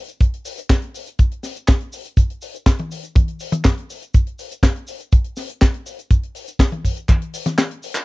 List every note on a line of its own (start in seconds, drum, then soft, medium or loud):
0.08 closed hi-hat medium
0.08 cabasa medium
0.21 kick loud
0.21 closed hi-hat medium
0.21 cabasa soft
0.34 closed hi-hat medium
0.45 open hi-hat loud
0.45 cabasa medium
0.57 closed hi-hat medium
0.57 cabasa soft
0.70 kick loud
0.70 snare loud
0.70 clap loud
0.70 closed hi-hat loud
0.70 cabasa medium
0.82 closed hi-hat medium
0.94 open hi-hat loud
0.94 cabasa medium
1.06 closed hi-hat medium
1.06 cabasa medium
1.19 kick loud
1.19 closed hi-hat medium
1.19 cabasa soft
1.31 closed hi-hat medium
1.43 snare soft
1.43 open hi-hat loud
1.43 cabasa medium
1.56 closed hi-hat medium
1.56 cabasa soft
1.68 kick loud
1.68 snare loud
1.68 clap medium
1.68 closed hi-hat medium
1.68 cabasa soft
1.80 closed hi-hat medium
1.93 open hi-hat loud
1.93 cabasa medium
2.05 closed hi-hat medium
2.05 cabasa medium
2.17 kick loud
2.17 closed hi-hat loud
2.17 cabasa medium
2.30 closed hi-hat medium
2.42 open hi-hat loud
2.42 cabasa medium
2.54 closed hi-hat soft
2.54 cabasa medium
2.66 kick loud
2.66 snare loud
2.66 clap medium
2.66 closed hi-hat loud
2.66 cabasa medium
2.78 closed hi-hat medium
2.78 high tom medium
2.91 open hi-hat loud
2.91 cabasa medium
3.03 closed hi-hat medium
3.03 cabasa medium
3.15 kick loud
3.15 closed hi-hat loud
3.15 high tom medium
3.15 cabasa soft
3.28 closed hi-hat medium
3.40 open hi-hat loud
3.40 cabasa medium
3.52 closed hi-hat medium
3.52 high tom medium
3.52 cabasa medium
3.64 kick loud
3.64 snare loud
3.64 clap medium
3.64 closed hi-hat medium
3.64 cabasa medium
3.78 closed hi-hat medium
3.90 open hi-hat loud
3.90 cabasa medium
4.02 closed hi-hat soft
4.02 cabasa medium
4.14 kick loud
4.14 closed hi-hat loud
4.14 cabasa soft
4.27 closed hi-hat medium
4.39 open hi-hat loud
4.39 cabasa medium
4.51 closed hi-hat medium
4.51 cabasa medium
4.63 kick loud
4.63 snare loud
4.63 clap medium
4.63 closed hi-hat loud
4.63 cabasa medium
4.76 closed hi-hat medium
4.87 open hi-hat loud
4.87 cabasa medium
5.00 closed hi-hat soft
5.00 cabasa medium
5.12 kick loud
5.12 closed hi-hat loud
5.12 cabasa medium
5.24 closed hi-hat medium
5.36 snare soft
5.36 open hi-hat loud
5.36 cabasa medium
5.49 closed hi-hat medium
5.49 cabasa medium
5.61 kick loud
5.61 snare loud
5.61 clap medium
5.61 closed hi-hat loud
5.61 cabasa soft
5.74 closed hi-hat medium
5.86 open hi-hat loud
5.86 cabasa medium
5.99 closed hi-hat soft
5.99 cabasa medium
6.10 kick loud
6.10 closed hi-hat medium
6.10 cabasa soft
6.23 closed hi-hat medium
6.35 open hi-hat loud
6.35 cabasa medium
6.47 closed hi-hat medium
6.47 cabasa medium
6.59 kick loud
6.59 snare loud
6.59 clap medium
6.59 closed hi-hat loud
6.59 cabasa soft
6.72 closed hi-hat medium
6.72 high tom medium
6.84 kick medium
6.84 open hi-hat loud
6.84 cabasa medium
6.97 closed hi-hat medium
6.97 cabasa medium
7.08 kick loud
7.08 clap medium
7.08 closed hi-hat loud
7.08 high tom medium
7.08 cabasa soft
7.22 closed hi-hat medium
7.33 open hi-hat loud
7.33 cabasa medium
7.45 snare soft
7.45 closed hi-hat medium
7.45 high tom medium
7.45 cabasa medium
7.58 snare loud
7.58 clap loud
7.58 closed hi-hat medium
7.58 cabasa soft
7.71 closed hi-hat medium
7.83 open hi-hat loud
7.83 cabasa medium
7.95 clap medium
7.95 closed hi-hat medium
7.95 cabasa medium